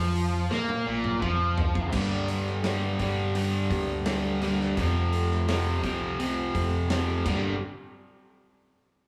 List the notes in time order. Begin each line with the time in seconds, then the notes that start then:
Already playing: F2 F3
0.15 open hi-hat
0.51 A#2 A#3, snare
0.69 high tom
0.87 A#1 A#2
1.04 mid tom
1.22 F2 F3, kick
1.58 floor tom
1.75 kick
1.92 G2 D3 G3 A#3 D4 G4, kick, crash
2.28 G3 A#3 D4 G4, open hi-hat
2.46 snare
2.63 G2 D3 G3 A#3 D4 G4, snare, open hi-hat
2.98 G2 D3 G3, kick, open hi-hat
3.35 G2 D3 G3, open hi-hat
3.70 D2 G3 A#3 D4 G4, kick, open hi-hat
4.06 G2 D3 G3 A#3 D4 G4, snare, open hi-hat
4.42 G2 D3 G3 A#3 D4 G4, open hi-hat
4.60 snare
4.77 F2 C3 F3 C4 F4 A4, kick, open hi-hat
5.13 C4 F4 A4, open hi-hat
5.31 snare
5.48 F2 C3 F3 C4 F4 A4, snare, open hi-hat
5.83 C2 F2 C3 F3, kick, open hi-hat
6.19 F2 C3 F3, open hi-hat
6.55 F2 C4 F4 A4, kick, open hi-hat
6.90 F2 C3 F3 C4 F4 A4, snare, open hi-hat
7.25 G1 G2 D3 G3 A#3 D4 A#4, kick, crash